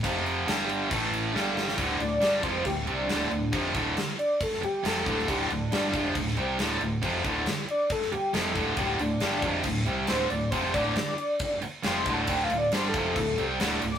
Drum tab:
CC |x-x-x-x-x-x-----|x-x-x-x-x-x-x-x-|x-x-x-x-x-x-x-x-|x-x-x-x-x-x-x-x-|
SD |----o-------o-oo|----o-------o---|----o----o--o--o|----o----o--o---|
BD |o-------o-------|o-----o-o-------|o-o-----o-----o-|o-----o-o-------|

CC |x-x-x-x-x-x-x-x-|x-x-x-x-x-x-x-x-|x-x-x-x-x-x-x-x-|x-x-x-x-x-x-x-x-|
SD |----o----o--o---|----o-------o---|----o-------o---|----o-------o--o|
BD |o-o-----o-----o-|o-----o-o-------|o-o-----o-----o-|o-----o-o-------|